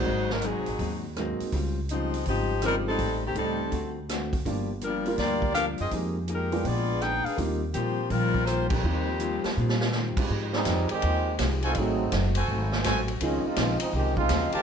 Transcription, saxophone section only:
X:1
M:4/4
L:1/8
Q:"Swing" 1/4=164
K:Fdor
V:1 name="Saxophone section"
[A,E_Gc] [_G,CEB] [G,CEA]3 z3 | z2 [F,A,CE]2 [F,CEG]2 [G,CEB] [G,CE=A]- | [G,CE=A] [E,=A,CG] [G,CEA]3 z3 | z2 [G,DFB]2 [B,FGd]2 [DGBf] [CFAe] |
z2 [A,EGB]2 [_CFAd]2 [EA_cg] [DAcf] | z2 [F,B,CG]2 [G,CFB]2 [B,FGc] [F,B,CG]- | [F,B,CG]6 z2 | z8 |
z8 | z8 |]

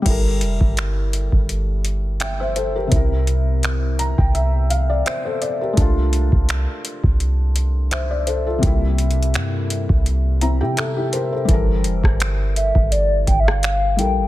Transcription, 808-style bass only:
X:1
M:4/4
L:1/16
Q:"Swing 16ths" 1/4=84
K:Gdor
V:1 name="808-style bass" clef=bass
G,,,2 F,,, G,,,4 G,,,8- G,,, | C,,6- C,, C,,4- C,, z4 | C,,3 C,,2 z2 C,,8- C,, | C,,4 G,,3 C,,4 C,4- C, |
G,,,2 F,,, G,,,4 G,,,3 G,,,4 B,,, G,,, |]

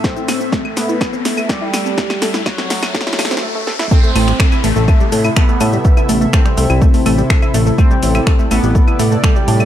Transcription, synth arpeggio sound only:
X:1
M:4/4
L:1/16
Q:1/4=124
K:Ador
V:1 name="Synth arpeggio sound"
A E A, C A, A, A E A, C A, A, A E A, C | A, A, A E A, C A, A, A E A, C A, A, A E | [A,A] [A,A] [A,A] [G,G] [A,A] [Ee] [A,A] [A,A] [A,A] [G,G] [A,A] [Ee] [A,A] [A,A] [A,A] [G,G] | [A,A] [Ee] [A,A] [A,A] [A,A] [G,G] [A,A] [Ee] [A,A] [A,A] [A,A] [G,G] [A,A] [Ee] [A,A] [A,A] |
[A,A] [G,G] [A,A] [Ee] [A,A] [A,A] [A,A] [G,G] [A,A] [Ee] [A,A] [A,A] [A,A] [G,G] [A,A] [Ee] |]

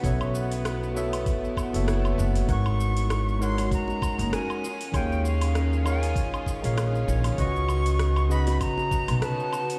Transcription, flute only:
X:1
M:4/4
L:1/8
Q:"Swing 16ths" 1/4=98
K:Db
V:1 name="Flute"
z8 | d'3 c' b2 a2 | =g f2 a2 z3 | d'3 _c' b2 =a2 |]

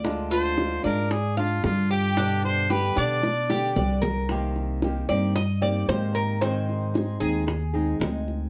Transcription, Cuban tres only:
X:1
M:4/4
L:1/8
Q:1/4=113
K:Cm
V:1 name="Cuban tres"
d F2 d2 f2 G | D2 G D2 G d B | z3 d e d c B | c3 A3 z2 |]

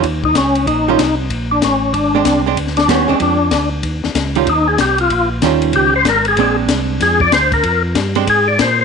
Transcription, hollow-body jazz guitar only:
X:1
M:4/4
L:1/8
Q:"Swing" 1/4=189
K:Bbmix
V:1 name="Hollow-body jazz guitar"
z4 z [E,G,_DF] z2 | z4 z [A,CD]2 [A,CD] | z2 [G,_C_D] [A,=C=D]2 z3 | z3 [E,G,_DF] z4 |
z2 [E,G,_DF]3 z3 | [A,CD]4- [A,CD] z3 | z3 [A,CD] z4 |]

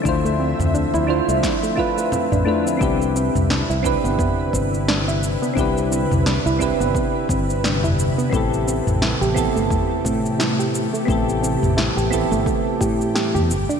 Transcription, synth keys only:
X:1
M:4/4
L:1/8
Q:"Swing 16ths" 1/4=87
K:C
V:1 name="Synth keys"
[A,DEFc]3 [A,DEFc] z [A,DEFB]2 [A,DEFB] | [CDEGB]3 [CDEGB] z4 | [CDEGB]3 [CDEGB] z4 | [B,CEGA]3 [B,CEGA] z4 |
[B,CEGA]3 [B,CEGA] z4 |]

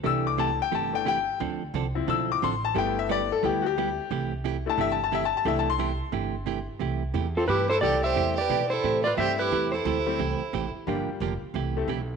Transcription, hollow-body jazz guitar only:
X:1
M:4/4
L:1/16
Q:"Swing" 1/4=177
K:C
V:1 name="Hollow-body jazz guitar"
[C,E,A,EG]2 z2 [C,E,A,EG] z3 [C,E,A,EG]2 z2 [C,E,A,EG] z3 | [D,F,CDA]2 z2 [D,F,CDA] z3 [D,F,CDA]2 z2 [D,F,CDA] z3 | [G,B,EG]2 z2 [G,B,EG] z3 [G,B,EG]2 z2 [G,B,EG] z3 | [C,E,A,EG]2 z2 [C,E,A,EG] z3 [C,E,A,EG]2 z2 [C,E,A,EG] z3 |
[C,E,A,EG]2 z2 [C,E,A,EG] z3 [C,E,A,EG]2 z2 [C,E,A,EG] z3 | [C,E,A,EG]2 z2 [C,E,A,EG] z3 [C,E,A,EG]2 z2 [C,E,A,EG] z3 | [C,E,A,EG]2 z2 [C,E,A,EG] z3 [C,E,A,EG]2 z2 [C,E,A,EG] z3 | [C,E,A,EG]2 z2 [C,E,A,EG] z3 [C,E,A,EG]2 z2 [C,E,A,EG] z3 |
[D,F,_B,DG]2 z2 [D,F,B,DG] z3 [C,E,A,EG]2 z2 [C,E,A,EG] z3 |]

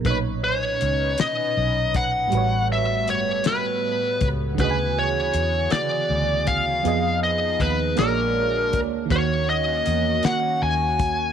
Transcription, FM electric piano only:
X:1
M:6/8
L:1/8
Q:3/8=53
K:B
V:1 name="FM electric piano"
[A,,B,,Dc]6 | [=A,,=G,FBc]6 | [C,=D,FG^dg]6 | [=F,_C_A_e]3 [^A,^FG^c=d]3 |
[D,A,Fc]6 |]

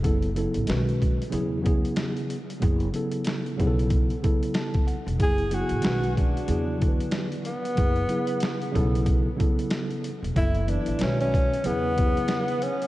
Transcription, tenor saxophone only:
X:1
M:4/4
L:1/16
Q:"Swing 16ths" 1/4=93
K:Bdor
V:1 name="Tenor saxophone"
z16 | z16 | G2 F4 D6 z2 B,2- | B,6 z8 z2 |
E2 D2 C C3 B,6 C2 |]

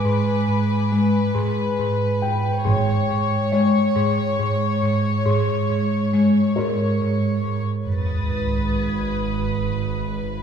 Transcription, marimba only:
X:1
M:3/4
L:1/8
Q:1/4=69
K:G#m
V:1 name="Marimba" clef=bass
G,, G,, G, G,, G,, G,, | G,, G,, G, G,, G,, G,, | G,, G,, G, G,, G,, G,, | z6 |]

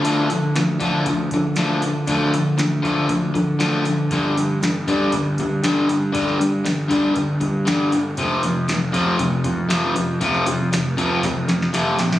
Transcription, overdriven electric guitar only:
X:1
M:4/4
L:1/8
Q:1/4=118
K:Dm
V:1 name="Overdriven electric guitar" clef=bass
[D,F,A,] [D,F,] [D,F,] [D,F,A,] [D,F,] [D,F,] [D,F,A,] [D,F,] | [D,F,A,] [D,F,] [D,F,] [D,F,A,] [D,F,] [D,F,] [D,F,A,] [D,F,] | [G,,D,G,] [G,,D,] [G,,D,] [G,,D,G,] [G,,D,] [G,,D,] [G,,D,G,] [G,,D,] | [G,,D,G,] [G,,D,] [G,,D,] [G,,D,G,] [G,,D,] [G,,D,] [G,,D,G,] [G,,D,] |
[F,,C,F,] [F,,C,] [F,,C,] [F,,C,F,] [F,,C,] [F,,C,] [F,,C,F,] [F,,C,] | [F,,C,F,] [F,,C,] [F,,C,] [F,,C,F,] [F,,C,] [F,,C,] [F,,C,F,] [F,,C,] |]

